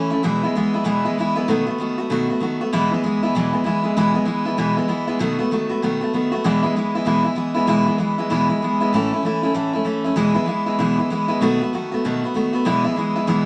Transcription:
Already playing: E3 A3 C#4
0.11 A3 C#4 E4
0.23 E2 B2 E3 G#3 B3 E4
0.43 E3 G#3 B3 E4
0.55 E3 G#3 B3 E4
0.74 E3 G#3 B3 E4
0.84 E2 B2 E3 G#3 B3 E4
1.05 E3 G#3 B3 E4
1.18 E3 G#3 B3 E4
1.35 E3 G#3 B3 E4
1.48 B2 D#3 A3 B3 F#4
1.66 A3 B3 F#4
1.78 D#3 A3 B3 F#4
1.98 A3 B3 F#4
2.10 B2 D#3 A3 B3 F#4
2.29 A3 B3 F#4
2.40 D#3 A3 B3 F#4
2.61 A3 B3 F#4
2.72 E2 B2 E3 G#3 B3 E4
2.91 E3 G#3 B3 E4
3.04 E3 G#3 B3 E4
3.23 E3 G#3 B3 E4
3.35 E2 B2 E3 G#3 B3 E4
3.53 E3 G#3 B3 E4
3.64 E3 G#3 B3 E4
3.83 E3 G#3 B3 E4
3.97 E2 B2 E3 G#3 B3 E4
4.14 E3 G#3 B3 E4
4.25 E3 G#3 B3 E4
4.45 E3 G#3 B3 E4
4.57 E2 B2 E3 G#3 B3 E4
4.77 E3 G#3 B3 E4
4.88 E3 G#3 B3 E4
5.07 E3 G#3 B3 E4
5.19 B2 D#3 A3 B3 F#4
5.39 A3 B3 F#4
5.51 D#3 A3 B3 F#4
5.69 A3 B3 F#4
5.82 B2 D#3 A3 B3 F#4
6.01 A3 B3 F#4
6.13 D#3 A3 B3 F#4
6.32 A3 B3 F#4
6.44 E2 B2 E3 G#3 B3 E4
6.62 E3 G#3 B3 E4
6.76 E3 G#3 B3 E4
6.95 E3 G#3 B3 E4
7.05 E2 B2 E3 G#3 B3 E4
7.24 E3 G#3 B3 E4
7.35 E3 G#3 B3 E4
7.54 E3 G#3 B3 E4
7.67 E2 B2 E3 G#3 B3 E4
7.85 E3 G#3 B3 E4
7.98 E3 G#3 B3 E4
8.18 E3 G#3 B3 E4
8.30 E2 B2 E3 G#3 B3 E4
8.49 E3 G#3 B3 E4
8.62 E3 G#3 B3 E4
8.80 E3 G#3 B3 E4
8.93 A2 E3 A3 C#4 E4
9.12 A3 C#4 E4
9.23 E3 A3 C#4 E4
9.43 A3 C#4 E4
9.54 A2 E3 A3 C#4 E4
9.73 A3 C#4 E4
9.85 E3 A3 C#4 E4
10.04 A3 C#4 E4
10.16 E2 B2 E3 G#3 B3 E4
10.34 E3 G#3 B3 E4
10.46 E3 G#3 B3 E4
10.66 E3 G#3 B3 E4
10.79 E2 B2 E3 G#3 B3 E4
10.98 E3 G#3 B3 E4
11.10 E3 G#3 B3 E4
11.28 E3 G#3 B3 E4
11.41 B2 D#3 A3 B3 F#4
11.61 A3 B3 F#4
11.73 D#3 A3 B3 F#4
11.92 A3 B3 F#4
12.04 B2 D#3 A3 B3 F#4
12.24 A3 B3 F#4
12.34 D#3 A3 B3 F#4
12.53 A3 B3 F#4
12.65 E2 B2 E3 G#3 B3 E4
12.84 E3 G#3 B3 E4
12.96 E3 G#3 B3 E4
13.15 E3 G#3 B3 E4
13.27 E2 B2 E3 G#3 B3 E4

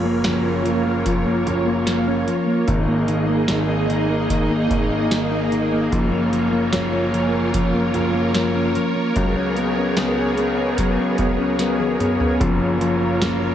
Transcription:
Already playing: F#1 F3 A#3 C#4 F4 A#4 C#5
0.05 A#3
0.24 F#1 F3, snare, closed hi-hat
0.45 C#4
0.65 F3, closed hi-hat
0.86 A#3
1.06 F3, kick, closed hi-hat
1.26 A#3
1.46 F#1 F3, closed hi-hat
1.67 A#3
1.87 F3, snare, closed hi-hat
2.08 C#4
2.27 F3, closed hi-hat
2.47 A#3
2.67 G#1 D#3 A#3 D#4 G#4 D#5, kick, closed hi-hat
2.88 A#3
3.08 D#3, closed hi-hat
3.29 A#3
3.48 G#1 D#3, snare, closed hi-hat
3.69 D#4
3.90 D#3, closed hi-hat
4.10 A#3
4.30 D#3, kick, closed hi-hat
4.50 A#3
4.70 G#1 D#3, kick, closed hi-hat
4.91 A#3
5.11 D#3, snare, closed hi-hat
5.31 D#4
5.52 D#3, closed hi-hat
5.72 A#3
5.91 F#1 F3 F4 A#4 C#5, kick, closed hi-hat
6.12 A#3
6.32 F3, closed hi-hat
6.52 A#3
6.73 F#1 F3 C#5, snare, closed hi-hat
6.93 C#4 F5
7.13 F3, closed hi-hat
7.22 G#5
7.33 A#3
7.54 F3, kick, closed hi-hat
7.74 A#3
7.94 F#1 F3, closed hi-hat
8.14 A#3
8.33 F3 A#4, snare, closed hi-hat
8.55 C#4
8.75 F3, closed hi-hat
8.96 A#3
9.16 C#2 F#3 B3 G#4, kick, closed hi-hat
9.36 C#4
9.56 B3, closed hi-hat
9.78 C#4
9.97 C#2 B3, snare, closed hi-hat
10.18 G#4
10.38 B3, closed hi-hat
10.58 C#4
10.78 F#3, kick, closed hi-hat
11.00 C#4
11.18 C#2 B3, kick, closed hi-hat
11.39 C#4
11.59 B3, snare, closed hi-hat
11.80 G#4, high tom
12.00 B3, closed hi-hat, mid tom
12.20 C#4, floor tom
12.40 F#1 F3 A#3 F4 A#4 C#5, kick, closed hi-hat
12.81 F3, closed hi-hat
13.22 F#1 A#3, snare, closed hi-hat, tambourine

